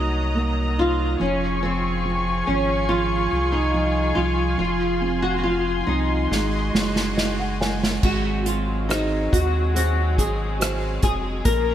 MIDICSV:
0, 0, Header, 1, 6, 480
1, 0, Start_track
1, 0, Tempo, 847458
1, 683, Time_signature, 4, 2, 24, 8
1, 2602, Tempo, 857143
1, 6607, End_track
2, 0, Start_track
2, 0, Title_t, "String section"
2, 0, Program_c, 0, 48
2, 0, Note_on_c, 0, 54, 63
2, 0, Note_on_c, 0, 75, 53
2, 0, Note_on_c, 0, 82, 59
2, 0, Note_on_c, 0, 87, 66
2, 663, Note_off_c, 0, 82, 0
2, 663, Note_off_c, 0, 87, 0
2, 664, Note_off_c, 0, 75, 0
2, 665, Note_off_c, 0, 54, 0
2, 683, Note_on_c, 0, 65, 67
2, 685, Note_on_c, 0, 68, 59
2, 685, Note_on_c, 0, 80, 60
2, 685, Note_on_c, 0, 85, 75
2, 2585, Note_off_c, 0, 85, 0
2, 2603, Note_on_c, 0, 84, 62
2, 3541, Note_off_c, 0, 65, 0
2, 3542, Note_off_c, 0, 68, 0
2, 3556, Note_on_c, 0, 66, 58
2, 3560, Note_on_c, 0, 75, 58
2, 4511, Note_off_c, 0, 80, 0
2, 4513, Note_off_c, 0, 84, 0
2, 4519, Note_off_c, 0, 66, 0
2, 4521, Note_off_c, 0, 75, 0
2, 4525, Note_on_c, 0, 56, 64
2, 4526, Note_on_c, 0, 54, 66
2, 4528, Note_on_c, 0, 60, 55
2, 6423, Note_off_c, 0, 54, 0
2, 6424, Note_off_c, 0, 60, 0
2, 6444, Note_on_c, 0, 58, 64
2, 6446, Note_on_c, 0, 61, 69
2, 6607, Note_off_c, 0, 56, 0
2, 6607, Note_off_c, 0, 58, 0
2, 6607, Note_off_c, 0, 61, 0
2, 6607, End_track
3, 0, Start_track
3, 0, Title_t, "Nylon-string guitar"
3, 0, Program_c, 1, 24
3, 0, Note_on_c, 1, 66, 66
3, 182, Note_off_c, 1, 66, 0
3, 448, Note_on_c, 1, 65, 78
3, 684, Note_on_c, 1, 61, 73
3, 692, Note_off_c, 1, 65, 0
3, 919, Note_off_c, 1, 61, 0
3, 921, Note_on_c, 1, 60, 67
3, 1397, Note_off_c, 1, 60, 0
3, 1399, Note_on_c, 1, 61, 68
3, 1635, Note_on_c, 1, 65, 85
3, 1648, Note_off_c, 1, 61, 0
3, 1994, Note_on_c, 1, 63, 70
3, 2010, Note_off_c, 1, 65, 0
3, 2351, Note_on_c, 1, 65, 78
3, 2369, Note_off_c, 1, 63, 0
3, 2580, Note_off_c, 1, 65, 0
3, 2599, Note_on_c, 1, 65, 82
3, 2938, Note_off_c, 1, 65, 0
3, 2955, Note_on_c, 1, 66, 81
3, 3033, Note_off_c, 1, 66, 0
3, 3044, Note_on_c, 1, 66, 63
3, 3070, Note_off_c, 1, 66, 0
3, 3073, Note_on_c, 1, 65, 79
3, 3274, Note_off_c, 1, 65, 0
3, 3281, Note_on_c, 1, 65, 49
3, 3314, Note_on_c, 1, 63, 65
3, 3321, Note_off_c, 1, 65, 0
3, 4264, Note_off_c, 1, 63, 0
3, 4534, Note_on_c, 1, 66, 72
3, 4764, Note_off_c, 1, 66, 0
3, 4766, Note_on_c, 1, 65, 59
3, 5007, Note_on_c, 1, 63, 68
3, 5018, Note_off_c, 1, 65, 0
3, 5252, Note_on_c, 1, 66, 73
3, 5258, Note_off_c, 1, 63, 0
3, 5488, Note_off_c, 1, 66, 0
3, 5494, Note_on_c, 1, 66, 77
3, 5731, Note_off_c, 1, 66, 0
3, 5733, Note_on_c, 1, 68, 79
3, 6203, Note_off_c, 1, 68, 0
3, 6209, Note_on_c, 1, 68, 84
3, 6273, Note_off_c, 1, 68, 0
3, 6442, Note_on_c, 1, 70, 93
3, 6607, Note_off_c, 1, 70, 0
3, 6607, End_track
4, 0, Start_track
4, 0, Title_t, "Felt piano"
4, 0, Program_c, 2, 0
4, 0, Control_c, 2, 64, 127
4, 0, Note_on_c, 2, 51, 50
4, 0, Note_on_c, 2, 58, 47
4, 0, Note_on_c, 2, 63, 40
4, 190, Note_off_c, 2, 58, 0
4, 198, Note_on_c, 2, 58, 50
4, 432, Note_off_c, 2, 63, 0
4, 440, Note_on_c, 2, 63, 50
4, 659, Note_off_c, 2, 51, 0
4, 666, Note_off_c, 2, 58, 0
4, 674, Note_off_c, 2, 63, 0
4, 677, Note_on_c, 2, 53, 61
4, 691, Control_c, 2, 64, 0
4, 800, Control_c, 2, 64, 127
4, 910, Note_off_c, 2, 53, 0
4, 918, Note_on_c, 2, 53, 45
4, 1154, Note_off_c, 2, 53, 0
4, 1163, Note_on_c, 2, 53, 52
4, 1397, Note_off_c, 2, 53, 0
4, 1406, Note_on_c, 2, 53, 46
4, 1634, Note_off_c, 2, 53, 0
4, 1643, Note_on_c, 2, 53, 45
4, 1873, Note_off_c, 2, 53, 0
4, 1882, Note_on_c, 2, 53, 39
4, 2111, Note_off_c, 2, 53, 0
4, 2119, Note_on_c, 2, 53, 47
4, 2348, Note_off_c, 2, 53, 0
4, 2357, Note_on_c, 2, 53, 44
4, 2585, Note_off_c, 2, 53, 0
4, 2593, Note_on_c, 2, 53, 54
4, 2611, Control_c, 2, 64, 0
4, 2703, Control_c, 2, 64, 127
4, 2838, Note_on_c, 2, 60, 45
4, 3072, Note_off_c, 2, 53, 0
4, 3080, Note_on_c, 2, 53, 51
4, 3310, Note_off_c, 2, 60, 0
4, 3319, Note_on_c, 2, 60, 41
4, 3548, Note_off_c, 2, 53, 0
4, 3554, Note_off_c, 2, 60, 0
4, 3564, Note_on_c, 2, 56, 57
4, 3570, Control_c, 2, 64, 0
4, 3683, Control_c, 2, 64, 127
4, 3795, Note_off_c, 2, 56, 0
4, 3804, Note_on_c, 2, 56, 45
4, 4036, Note_off_c, 2, 56, 0
4, 4045, Note_on_c, 2, 56, 48
4, 4046, Note_on_c, 2, 75, 56
4, 4160, Note_off_c, 2, 75, 0
4, 4171, Note_on_c, 2, 78, 53
4, 4281, Note_off_c, 2, 56, 0
4, 4283, Note_off_c, 2, 78, 0
4, 4289, Note_on_c, 2, 80, 52
4, 4290, Note_on_c, 2, 56, 40
4, 4514, Note_off_c, 2, 80, 0
4, 4522, Note_off_c, 2, 56, 0
4, 4530, Note_on_c, 2, 56, 54
4, 4540, Control_c, 2, 64, 0
4, 4622, Control_c, 2, 64, 127
4, 5007, Note_on_c, 2, 66, 46
4, 5010, Note_on_c, 2, 68, 44
4, 5012, Note_on_c, 2, 72, 53
4, 5477, Note_off_c, 2, 66, 0
4, 5478, Note_off_c, 2, 68, 0
4, 5479, Note_off_c, 2, 72, 0
4, 5488, Note_on_c, 2, 66, 44
4, 5488, Note_on_c, 2, 68, 40
4, 5490, Note_on_c, 2, 72, 47
4, 5954, Note_off_c, 2, 66, 0
4, 5954, Note_off_c, 2, 68, 0
4, 5955, Note_off_c, 2, 72, 0
4, 5963, Note_on_c, 2, 66, 39
4, 5965, Note_on_c, 2, 68, 42
4, 5966, Note_on_c, 2, 72, 48
4, 6422, Note_off_c, 2, 56, 0
4, 6427, Note_off_c, 2, 66, 0
4, 6428, Note_off_c, 2, 68, 0
4, 6429, Note_off_c, 2, 72, 0
4, 6438, Note_on_c, 2, 58, 56
4, 6453, Control_c, 2, 64, 0
4, 6563, Control_c, 2, 64, 127
4, 6607, Note_off_c, 2, 58, 0
4, 6607, End_track
5, 0, Start_track
5, 0, Title_t, "Sub bass"
5, 0, Program_c, 3, 38
5, 0, Note_on_c, 3, 36, 78
5, 659, Note_off_c, 3, 36, 0
5, 686, Note_on_c, 3, 29, 97
5, 1381, Note_off_c, 3, 29, 0
5, 1403, Note_on_c, 3, 32, 86
5, 1861, Note_off_c, 3, 32, 0
5, 1882, Note_on_c, 3, 36, 76
5, 2339, Note_off_c, 3, 36, 0
5, 2362, Note_on_c, 3, 36, 81
5, 2586, Note_off_c, 3, 36, 0
5, 2600, Note_on_c, 3, 29, 84
5, 3299, Note_off_c, 3, 29, 0
5, 3320, Note_on_c, 3, 36, 78
5, 3545, Note_off_c, 3, 36, 0
5, 3562, Note_on_c, 3, 32, 101
5, 3787, Note_off_c, 3, 32, 0
5, 3802, Note_on_c, 3, 30, 72
5, 4508, Note_off_c, 3, 30, 0
5, 4528, Note_on_c, 3, 32, 89
5, 5230, Note_off_c, 3, 32, 0
5, 5254, Note_on_c, 3, 39, 97
5, 5732, Note_on_c, 3, 32, 76
5, 5741, Note_off_c, 3, 39, 0
5, 6185, Note_off_c, 3, 32, 0
5, 6207, Note_on_c, 3, 29, 81
5, 6428, Note_off_c, 3, 29, 0
5, 6443, Note_on_c, 3, 34, 96
5, 6607, Note_off_c, 3, 34, 0
5, 6607, End_track
6, 0, Start_track
6, 0, Title_t, "Drums"
6, 3567, Note_on_c, 9, 38, 45
6, 3623, Note_off_c, 9, 38, 0
6, 3809, Note_on_c, 9, 38, 56
6, 3865, Note_off_c, 9, 38, 0
6, 3927, Note_on_c, 9, 38, 52
6, 3983, Note_off_c, 9, 38, 0
6, 4049, Note_on_c, 9, 38, 60
6, 4105, Note_off_c, 9, 38, 0
6, 4294, Note_on_c, 9, 38, 76
6, 4350, Note_off_c, 9, 38, 0
6, 4416, Note_on_c, 9, 38, 72
6, 4472, Note_off_c, 9, 38, 0
6, 4527, Note_on_c, 9, 36, 86
6, 4527, Note_on_c, 9, 49, 75
6, 4583, Note_off_c, 9, 36, 0
6, 4583, Note_off_c, 9, 49, 0
6, 4767, Note_on_c, 9, 42, 54
6, 4823, Note_off_c, 9, 42, 0
6, 5015, Note_on_c, 9, 42, 71
6, 5020, Note_on_c, 9, 37, 91
6, 5071, Note_off_c, 9, 42, 0
6, 5076, Note_off_c, 9, 37, 0
6, 5254, Note_on_c, 9, 36, 77
6, 5258, Note_on_c, 9, 42, 65
6, 5310, Note_off_c, 9, 36, 0
6, 5314, Note_off_c, 9, 42, 0
6, 5496, Note_on_c, 9, 42, 71
6, 5552, Note_off_c, 9, 42, 0
6, 5732, Note_on_c, 9, 36, 69
6, 5736, Note_on_c, 9, 42, 66
6, 5788, Note_off_c, 9, 36, 0
6, 5792, Note_off_c, 9, 42, 0
6, 5973, Note_on_c, 9, 42, 72
6, 5978, Note_on_c, 9, 37, 85
6, 6029, Note_off_c, 9, 42, 0
6, 6034, Note_off_c, 9, 37, 0
6, 6203, Note_on_c, 9, 42, 60
6, 6207, Note_on_c, 9, 36, 81
6, 6210, Note_on_c, 9, 37, 29
6, 6259, Note_off_c, 9, 42, 0
6, 6263, Note_off_c, 9, 36, 0
6, 6266, Note_off_c, 9, 37, 0
6, 6442, Note_on_c, 9, 42, 69
6, 6443, Note_on_c, 9, 36, 93
6, 6498, Note_off_c, 9, 42, 0
6, 6499, Note_off_c, 9, 36, 0
6, 6607, End_track
0, 0, End_of_file